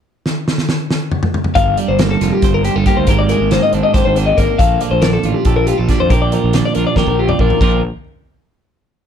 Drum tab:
CC |--------------|--------------|--------------|--------------|
HH |--------------|x-x-x-x-x-x-x-|x-x-x-x-x-x-x-|x-x-x-x-x-x-x-|
SD |--o-ooo-o-----|----o-o-o-----|----o---o-----|----o-------o-|
T2 |----------oooo|--------------|--------------|--------------|
FT |--------------|--------------|--------------|--------------|
BD |--------------|o-------o---o-|o-------o---o-|o-------o---o-|

CC |--------------|x-------------|
HH |x-x-x-x-------|--------------|
SD |----o---o-----|--------------|
T2 |-----------o--|--------------|
FT |-------------o|--------------|
BD |o-------oo--o-|o-------------|